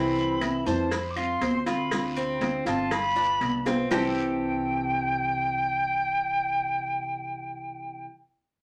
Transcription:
Already playing: upright bass C2, nylon-string guitar C3 E3 A3 C4 E4, cuban tres C4, flute B5
0.16 high conga, maracas
0.40 nylon-string guitar E3 A3 C4 E4, cuban tres E4, cowbell, high conga, short guiro, claves, maracas
0.66 upright bass F2, nylon-string guitar E3 A3 C4 E4, cuban tres C5, flute A5, high conga, short guiro, maracas
0.91 flute B5, muted nylon-string guitar stroke, cowbell, high conga, long guiro, maracas
1.10 flute D6
1.16 nylon-string guitar A3 C4 F4, cuban tres F4, flute C6, high conga, claves, maracas
1.41 upright bass D2, cuban tres C5, cowbell, high conga, short guiro, maracas
1.66 nylon-string guitar A3 C4 F4, cuban tres F4, flute B5, cowbell, short guiro, maracas
1.91 nylon-string guitar D3 A3 C4 F4, cowbell, high conga, long guiro, claves, maracas
2.16 cuban tres C4, high conga, maracas
2.40 nylon-string guitar D3 A3 C4 F4, cowbell, high conga, short guiro, maracas
2.65 upright bass G1, nylon-string guitar A3 C4 F4, cuban tres F4, flute A5, cowbell, short guiro, maracas
2.91 flute B5, muted nylon-string guitar stroke, cowbell, high conga, low conga, long guiro, claves, maracas
3.16 nylon-string guitar B3 F4, cuban tres D4, high conga, maracas
3.41 upright bass C2, cowbell, high conga, short guiro, claves, maracas
3.66 nylon-string guitar B3 F4, cuban tres C4, cowbell, high bongo, high conga, short guiro, maracas
3.90 upright bass C2, nylon-string guitar C3 E3 A3 C4, cuban tres C4 G4 A4, flute G5, low bongo, low conga, long guiro, claves, maracas
3.94 nylon-string guitar E4

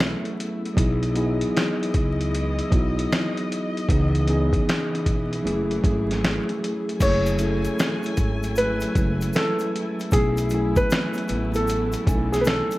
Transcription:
Already playing: upright bass B1, tine electric piano F#3 A3 C#4 E4 A4 B4, string section A3 B3 E4, felt piano E5
0.00 finger snap, snare, closed hi-hat
0.25 closed hi-hat
0.40 closed hi-hat
0.65 closed hi-hat
0.74 upright bass B1, string section E3 G#3 D#5, tine electric piano F#3 B3 D#4 E4, kick, closed hi-hat
0.79 tine electric piano G#4
1.03 closed hi-hat
1.14 tine electric piano F#3 B3 D#4 E4, closed hi-hat
1.18 tine electric piano G#4
1.41 closed hi-hat
1.57 finger snap, snare, closed hi-hat
1.83 closed hi-hat
1.94 upright bass C#2, kick, closed hi-hat
2.21 closed hi-hat
2.35 closed hi-hat
2.59 closed hi-hat
2.70 upright bass B1, tine electric piano F#3 B3 D#4 E4, kick, closed hi-hat
2.74 tine electric piano F#4
2.99 closed hi-hat
3.12 finger snap, snare, closed hi-hat
3.37 closed hi-hat
3.52 closed hi-hat
3.77 closed hi-hat
3.88 upright bass C#2, string section C#3 E3 B3, tine electric piano E3 B3 C#4 D#4 G#4, kick, closed hi-hat
4.15 closed hi-hat
4.26 tine electric piano E3 B3 C#4 D#4, closed hi-hat
4.30 tine electric piano G#4
4.53 kick, closed hi-hat
4.69 finger snap, snare, closed hi-hat
4.95 closed hi-hat
5.06 upright bass B1, kick, closed hi-hat
5.33 closed hi-hat
5.43 upright bass F#1, tine electric piano F#3 A3 C#4 E4 G#4, string section F#3 A3 G#4
5.47 closed hi-hat
5.71 closed hi-hat
5.81 upright bass G#1, tine electric piano F#3 A3 C#4 E4, kick, closed hi-hat
5.85 tine electric piano G#4
6.11 snare, closed hi-hat
6.24 finger snap, snare, closed hi-hat
6.49 closed hi-hat
6.64 closed hi-hat
6.89 closed hi-hat
6.99 upright bass F#1, tine electric piano F#3 A3 C#4 E4, string section F#3 A3 E4 G#5, felt piano C#5, kick, closed hi-hat, crash, shaker
7.03 tine electric piano G#4
7.26 closed hi-hat, shaker
7.37 tine electric piano F#3 A3 C#4 E4, closed hi-hat, shaker
7.41 tine electric piano A4
7.65 closed hi-hat, shaker
7.79 finger snap, snare, closed hi-hat, shaker
8.03 closed hi-hat, shaker
8.17 upright bass G#1, kick, closed hi-hat, shaker
8.43 closed hi-hat, shaker
8.56 felt piano B4, closed hi-hat, shaker
8.80 closed hi-hat, shaker
8.94 upright bass F#1, tine electric piano F#3 G#3 C#4 E4, kick, closed hi-hat, shaker
8.99 tine electric piano A3 B4
9.21 closed hi-hat, shaker
9.33 felt piano A4, finger snap, snare, closed hi-hat, shaker
9.59 closed hi-hat, shaker
9.76 closed hi-hat
9.99 closed hi-hat, shaker
10.11 upright bass B1, tine electric piano F#3 A3 C#4 E4, string section A3 B3, felt piano G#4, kick, closed hi-hat, shaker
10.16 tine electric piano G#4
10.37 closed hi-hat, shaker
10.50 tine electric piano F#3 A3 C#4 E4, closed hi-hat, shaker
10.55 tine electric piano G#5
10.76 felt piano B4, kick, closed hi-hat, shaker
10.90 finger snap, snare, closed hi-hat, shaker
11.14 shaker
11.18 closed hi-hat
11.28 upright bass A1, closed hi-hat, shaker
11.54 felt piano A4, closed hi-hat, shaker
11.68 closed hi-hat, shaker
11.92 closed hi-hat, shaker
12.05 upright bass B1, tine electric piano F#3 A3 C#4 D#4, kick, closed hi-hat, shaker
12.09 tine electric piano G#5
12.14 tine electric piano E4
12.32 felt piano G#4, snare, closed hi-hat, shaker
12.41 felt piano B4, shaker
12.46 felt piano A4, finger snap, snare, closed hi-hat
12.71 closed hi-hat, shaker

